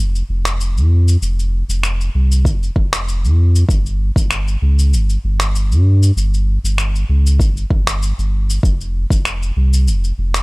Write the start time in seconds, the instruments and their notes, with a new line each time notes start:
Already playing: sub bass F1
0.15 shaker
0.29 sub bass F1
0.45 finger snap, shaker
0.61 shaker
0.76 sub bass F2, shaker
1.08 shaker
1.21 sub bass F1, shaker
1.39 shaker
1.68 sub bass F1, shaker
1.83 finger snap, shaker
2.01 shaker
2.15 sub bass C2
2.32 shaker
2.45 sub bass F1, kick, shaker
2.63 shaker
2.76 sub bass F1, kick
2.93 finger snap, shaker
3.08 shaker
3.23 sub bass F2, shaker
3.55 shaker
3.69 sub bass G1, kick, shaker
3.86 shaker
4.16 sub bass G1, kick, shaker
4.31 finger snap, shaker
4.48 shaker
4.62 sub bass C#2
4.79 shaker
4.93 sub bass G1, shaker
5.09 shaker
5.24 sub bass G1
5.40 finger snap, shaker
5.55 shaker
5.71 sub bass G2, shaker
6.03 shaker
6.16 sub bass G1, shaker
6.34 shaker
6.64 sub bass G1, shaker
6.78 finger snap, shaker
6.96 shaker
7.09 sub bass C#2
7.26 shaker
7.40 sub bass G1, kick, shaker
7.57 shaker
7.71 sub bass G1, kick
7.87 finger snap, shaker
8.03 shaker
8.18 sub bass G1, shaker
8.50 shaker
8.63 sub bass F1, kick, shaker
8.81 shaker
9.10 sub bass F1, kick, shaker
9.25 finger snap, shaker
9.43 shaker
9.56 sub bass C2
9.73 shaker
9.87 sub bass F1, shaker
10.04 shaker
10.18 sub bass F1
10.34 finger snap, shaker